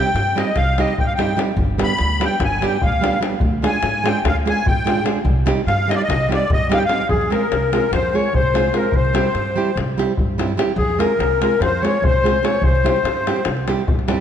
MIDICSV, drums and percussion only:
0, 0, Header, 1, 2, 480
1, 0, Start_track
1, 0, Key_signature, -3, "minor"
1, 0, Tempo, 408998
1, 1848, Time_signature, 9, 3, 24, 8
1, 8320, Key_signature, -4, "minor"
1, 16670, End_track
2, 0, Start_track
2, 0, Title_t, "Davul"
2, 69, Note_on_c, 9, 37, 22
2, 184, Note_off_c, 9, 37, 0
2, 184, Note_on_c, 9, 37, 59
2, 301, Note_off_c, 9, 37, 0
2, 321, Note_on_c, 9, 37, 23
2, 438, Note_off_c, 9, 37, 0
2, 444, Note_on_c, 9, 37, 64
2, 561, Note_off_c, 9, 37, 0
2, 653, Note_on_c, 9, 37, 60
2, 653, Note_on_c, 9, 43, 53
2, 770, Note_off_c, 9, 37, 0
2, 770, Note_off_c, 9, 43, 0
2, 917, Note_on_c, 9, 37, 58
2, 1034, Note_off_c, 9, 37, 0
2, 1036, Note_on_c, 9, 37, 29
2, 1153, Note_off_c, 9, 37, 0
2, 1154, Note_on_c, 9, 43, 93
2, 1271, Note_off_c, 9, 43, 0
2, 1395, Note_on_c, 9, 37, 62
2, 1512, Note_off_c, 9, 37, 0
2, 1523, Note_on_c, 9, 37, 19
2, 1630, Note_off_c, 9, 37, 0
2, 1630, Note_on_c, 9, 37, 68
2, 1748, Note_off_c, 9, 37, 0
2, 1850, Note_on_c, 9, 43, 93
2, 1968, Note_off_c, 9, 43, 0
2, 2106, Note_on_c, 9, 37, 74
2, 2223, Note_off_c, 9, 37, 0
2, 2224, Note_on_c, 9, 37, 25
2, 2329, Note_off_c, 9, 37, 0
2, 2329, Note_on_c, 9, 37, 50
2, 2446, Note_off_c, 9, 37, 0
2, 2595, Note_on_c, 9, 37, 68
2, 2712, Note_off_c, 9, 37, 0
2, 2818, Note_on_c, 9, 37, 77
2, 2818, Note_on_c, 9, 43, 77
2, 2935, Note_off_c, 9, 37, 0
2, 2935, Note_off_c, 9, 43, 0
2, 3077, Note_on_c, 9, 37, 64
2, 3195, Note_off_c, 9, 37, 0
2, 3199, Note_on_c, 9, 37, 27
2, 3305, Note_on_c, 9, 43, 99
2, 3317, Note_off_c, 9, 37, 0
2, 3423, Note_off_c, 9, 43, 0
2, 3564, Note_on_c, 9, 37, 76
2, 3677, Note_off_c, 9, 37, 0
2, 3677, Note_on_c, 9, 37, 22
2, 3785, Note_off_c, 9, 37, 0
2, 3785, Note_on_c, 9, 37, 74
2, 3903, Note_off_c, 9, 37, 0
2, 3992, Note_on_c, 9, 43, 97
2, 4110, Note_off_c, 9, 43, 0
2, 4272, Note_on_c, 9, 37, 77
2, 4389, Note_off_c, 9, 37, 0
2, 4389, Note_on_c, 9, 37, 28
2, 4490, Note_off_c, 9, 37, 0
2, 4490, Note_on_c, 9, 37, 75
2, 4607, Note_off_c, 9, 37, 0
2, 4637, Note_on_c, 9, 37, 23
2, 4754, Note_off_c, 9, 37, 0
2, 4760, Note_on_c, 9, 37, 78
2, 4878, Note_off_c, 9, 37, 0
2, 4989, Note_on_c, 9, 37, 91
2, 4989, Note_on_c, 9, 43, 70
2, 5107, Note_off_c, 9, 37, 0
2, 5107, Note_off_c, 9, 43, 0
2, 5251, Note_on_c, 9, 37, 67
2, 5362, Note_off_c, 9, 37, 0
2, 5362, Note_on_c, 9, 37, 29
2, 5472, Note_on_c, 9, 43, 108
2, 5479, Note_off_c, 9, 37, 0
2, 5590, Note_off_c, 9, 43, 0
2, 5716, Note_on_c, 9, 37, 72
2, 5817, Note_off_c, 9, 37, 0
2, 5817, Note_on_c, 9, 37, 23
2, 5934, Note_off_c, 9, 37, 0
2, 5935, Note_on_c, 9, 37, 72
2, 6053, Note_off_c, 9, 37, 0
2, 6164, Note_on_c, 9, 43, 89
2, 6281, Note_off_c, 9, 43, 0
2, 6417, Note_on_c, 9, 37, 77
2, 6535, Note_off_c, 9, 37, 0
2, 6548, Note_on_c, 9, 37, 29
2, 6665, Note_off_c, 9, 37, 0
2, 6670, Note_on_c, 9, 37, 57
2, 6788, Note_off_c, 9, 37, 0
2, 6939, Note_on_c, 9, 37, 73
2, 7051, Note_off_c, 9, 37, 0
2, 7051, Note_on_c, 9, 37, 28
2, 7156, Note_off_c, 9, 37, 0
2, 7156, Note_on_c, 9, 37, 78
2, 7156, Note_on_c, 9, 43, 74
2, 7274, Note_off_c, 9, 37, 0
2, 7274, Note_off_c, 9, 43, 0
2, 7420, Note_on_c, 9, 37, 69
2, 7537, Note_off_c, 9, 37, 0
2, 7631, Note_on_c, 9, 43, 109
2, 7748, Note_off_c, 9, 43, 0
2, 7883, Note_on_c, 9, 37, 84
2, 7982, Note_off_c, 9, 37, 0
2, 7982, Note_on_c, 9, 37, 29
2, 8091, Note_off_c, 9, 37, 0
2, 8091, Note_on_c, 9, 37, 69
2, 8209, Note_off_c, 9, 37, 0
2, 8324, Note_on_c, 9, 43, 100
2, 8442, Note_off_c, 9, 43, 0
2, 8464, Note_on_c, 9, 37, 27
2, 8581, Note_off_c, 9, 37, 0
2, 8594, Note_on_c, 9, 37, 63
2, 8712, Note_off_c, 9, 37, 0
2, 8823, Note_on_c, 9, 37, 68
2, 8940, Note_off_c, 9, 37, 0
2, 9071, Note_on_c, 9, 37, 69
2, 9189, Note_off_c, 9, 37, 0
2, 9305, Note_on_c, 9, 37, 79
2, 9305, Note_on_c, 9, 43, 77
2, 9422, Note_off_c, 9, 37, 0
2, 9422, Note_off_c, 9, 43, 0
2, 9792, Note_on_c, 9, 43, 99
2, 9909, Note_off_c, 9, 43, 0
2, 10035, Note_on_c, 9, 37, 70
2, 10152, Note_off_c, 9, 37, 0
2, 10257, Note_on_c, 9, 37, 59
2, 10363, Note_off_c, 9, 37, 0
2, 10363, Note_on_c, 9, 37, 24
2, 10470, Note_on_c, 9, 43, 94
2, 10481, Note_off_c, 9, 37, 0
2, 10587, Note_off_c, 9, 43, 0
2, 10618, Note_on_c, 9, 37, 27
2, 10735, Note_off_c, 9, 37, 0
2, 10735, Note_on_c, 9, 37, 79
2, 10853, Note_off_c, 9, 37, 0
2, 10971, Note_on_c, 9, 37, 52
2, 11088, Note_off_c, 9, 37, 0
2, 11471, Note_on_c, 9, 37, 67
2, 11471, Note_on_c, 9, 43, 61
2, 11588, Note_off_c, 9, 37, 0
2, 11588, Note_off_c, 9, 43, 0
2, 11728, Note_on_c, 9, 37, 54
2, 11846, Note_off_c, 9, 37, 0
2, 11941, Note_on_c, 9, 43, 93
2, 12058, Note_off_c, 9, 43, 0
2, 12199, Note_on_c, 9, 37, 66
2, 12316, Note_off_c, 9, 37, 0
2, 12430, Note_on_c, 9, 37, 69
2, 12547, Note_off_c, 9, 37, 0
2, 12552, Note_on_c, 9, 37, 24
2, 12646, Note_on_c, 9, 43, 79
2, 12669, Note_off_c, 9, 37, 0
2, 12763, Note_off_c, 9, 43, 0
2, 12780, Note_on_c, 9, 37, 24
2, 12898, Note_off_c, 9, 37, 0
2, 12911, Note_on_c, 9, 37, 70
2, 13028, Note_off_c, 9, 37, 0
2, 13147, Note_on_c, 9, 37, 68
2, 13265, Note_off_c, 9, 37, 0
2, 13399, Note_on_c, 9, 37, 73
2, 13516, Note_off_c, 9, 37, 0
2, 13636, Note_on_c, 9, 37, 71
2, 13636, Note_on_c, 9, 43, 63
2, 13753, Note_off_c, 9, 37, 0
2, 13753, Note_off_c, 9, 43, 0
2, 13904, Note_on_c, 9, 37, 60
2, 14021, Note_off_c, 9, 37, 0
2, 14128, Note_on_c, 9, 43, 114
2, 14246, Note_off_c, 9, 43, 0
2, 14392, Note_on_c, 9, 37, 62
2, 14509, Note_off_c, 9, 37, 0
2, 14608, Note_on_c, 9, 37, 67
2, 14723, Note_off_c, 9, 37, 0
2, 14723, Note_on_c, 9, 37, 28
2, 14829, Note_on_c, 9, 43, 93
2, 14841, Note_off_c, 9, 37, 0
2, 14946, Note_off_c, 9, 43, 0
2, 14972, Note_on_c, 9, 37, 28
2, 15089, Note_off_c, 9, 37, 0
2, 15092, Note_on_c, 9, 37, 75
2, 15209, Note_off_c, 9, 37, 0
2, 15214, Note_on_c, 9, 37, 26
2, 15320, Note_off_c, 9, 37, 0
2, 15320, Note_on_c, 9, 37, 71
2, 15437, Note_off_c, 9, 37, 0
2, 15455, Note_on_c, 9, 37, 26
2, 15572, Note_off_c, 9, 37, 0
2, 15575, Note_on_c, 9, 37, 73
2, 15685, Note_off_c, 9, 37, 0
2, 15685, Note_on_c, 9, 37, 28
2, 15785, Note_off_c, 9, 37, 0
2, 15785, Note_on_c, 9, 37, 77
2, 15902, Note_off_c, 9, 37, 0
2, 15923, Note_on_c, 9, 37, 28
2, 16040, Note_off_c, 9, 37, 0
2, 16051, Note_on_c, 9, 37, 65
2, 16168, Note_off_c, 9, 37, 0
2, 16290, Note_on_c, 9, 43, 111
2, 16408, Note_off_c, 9, 43, 0
2, 16417, Note_on_c, 9, 37, 30
2, 16529, Note_off_c, 9, 37, 0
2, 16529, Note_on_c, 9, 37, 74
2, 16647, Note_off_c, 9, 37, 0
2, 16670, End_track
0, 0, End_of_file